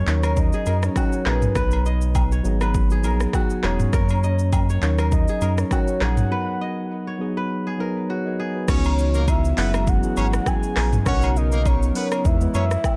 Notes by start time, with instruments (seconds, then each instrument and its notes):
Already playing: kora A#4 C#5 D#5
0.06 analog synth bass D#2, tine electric piano F#3 C#4 D#4 A#4, soft synth lead C#5, clap, shaker
0.23 kora A#4, cross-stick, high agogo, shaker
0.37 soft synth lead D#5, kick, shaker
0.53 kora G#4, shaker
0.65 analog synth bass F#2, tine electric piano F#3 C#4 D#4 F#4, kora A#4, high agogo, shaker
0.83 soft synth lead C#5, cross-stick, shaker
0.96 kora F#4, kick, cross-stick, low woodblock, shaker
1.12 shaker
1.25 analog synth bass A#1, tine electric piano F#3 C#4 D#4 A#4, kora G#4, soft synth lead B4, cross-stick, clap, high agogo
1.42 mid tom, shaker
1.54 analog synth bass B1, tine electric piano F#3 B3 D#4, kora B4, kick, cross-stick, shaker
1.71 high agogo, shaker
1.86 kora D#5, shaker
2.01 shaker
2.15 kick, high agogo, low woodblock, shaker
2.32 kora C#5, shaker
2.44 analog synth bass G#1, tine electric piano F#3 B3 D#4 G#4, shaker
2.61 kora B4, cross-stick, high agogo, shaker
2.74 kick, shaker
2.90 kora G#4, shaker
3.03 analog synth bass A#1, tine electric piano F#3 B3 D#4 G#4, kora A#4, high agogo, shaker
3.20 cross-stick, shaker
3.33 kora F#4, kick, cross-stick, low woodblock, shaker
3.50 shaker
3.62 analog synth bass E1, tine electric piano F#3 B3 D#4 G#4, kora G#4, soft synth lead C#5, cross-stick, clap, high agogo
3.80 mid tom, shaker
3.92 analog synth bass F#2, tine electric piano F#3 A#3 C#4 A#4, kora A#4, kick, cross-stick, shaker
4.09 high agogo, shaker
4.24 kora D#5, shaker
4.39 shaker
4.53 kick, high agogo, low woodblock, shaker
4.69 kora C#5, shaker
4.81 analog synth bass D#2, tine electric piano F#3 C#4 D#4 A#4, soft synth lead C#5, clap, shaker
4.99 kora A#4, cross-stick, high agogo, shaker
5.12 soft synth lead D#5, kick, shaker
5.28 kora G#4, shaker
5.41 analog synth bass F#2, tine electric piano F#3 C#4 D#4 A#4, kora A#4, high agogo, shaker
5.58 soft synth lead C#5, cross-stick, shaker
5.71 kora F#4, kick, cross-stick, low woodblock, shaker
5.88 shaker
6.00 analog synth bass A#1, tine electric piano F#3 C#4 D#4 C#5, kora G#4, soft synth lead F#5, cross-stick, clap, high agogo
6.17 mid tom, shaker
6.30 tine electric piano F#3 B3 D#4 A#4, kora B4
6.61 kora D#5
7.07 kora C#5
7.19 tine electric piano F#3 B3 D#4 G#4
7.37 kora B4
7.67 kora G#4
7.78 tine electric piano F#3 B3 D#4 B4, kora A#4
8.09 kora F#4, tine electric piano G#4 C#5
8.25 tine electric piano A#4 D#5
8.40 kora G#4
8.55 tine electric piano F#4 B4
8.67 analog synth bass C#2, tine electric piano E3 B3 C#4 D#4 F#4, analog synth pad E3 B3 D#4 F#4, horn section C#4 C#5, soft synth lead C#5, kick, cross-stick, crash, shaker
8.84 high agogo, shaker
8.99 shaker
9.14 horn section A#3 A#4, shaker
9.28 soft synth lead E5, kick, high agogo, shaker
9.45 shaker
9.56 analog synth bass F#1, tine electric piano F#3 B3 C#4 E4 G#4, analog synth pad G#3, horn section B3 B4, clap, open hi-hat, shaker
9.74 cross-stick, high agogo, shaker
9.87 soft synth lead F#5, kick, shaker
10.02 tine electric piano F#3 B3 C#4 E4 G#4, shaker
10.17 analog synth bass G#1, horn section C#4 C#5, high agogo, shaker
10.33 cross-stick, shaker
10.46 soft synth lead G#5, kick, cross-stick, low woodblock, shaker
10.63 shaker
10.76 analog synth bass A#1, cross-stick, clap, open hi-hat, high agogo
10.93 mid tom, shaker
11.05 analog synth bass B1, analog synth pad C#3 D#4 A#4, tine electric piano F#3 B3 C#4 D4 A#4, horn section C#4 C#5, soft synth lead F#5, kick, cross-stick, shaker
11.13 tine electric piano D#4
11.22 high agogo, shaker
11.36 soft synth lead D#5, shaker
11.52 horn section A#3 A#4, shaker
11.66 soft synth lead C#5, kick, high agogo, shaker
11.83 shaker
11.94 tine electric piano F#3 B3 C#4 D#4 A#4, horn section B3 B4, soft synth lead C#5, open hi-hat, shaker
12.12 cross-stick, high agogo, shaker
12.24 analog synth bass E2, analog synth pad E3 G#3 E4, tine electric piano G#3 B3 D#4 E4 B4, soft synth lead E5, kick, shaker
12.40 tine electric piano G#3 B3 E4 B4, shaker
12.54 analog synth bass F#2, horn section C#4 C#5, soft synth lead E5, high agogo, shaker
12.71 cross-stick, shaker
12.84 kick, cross-stick, low woodblock, shaker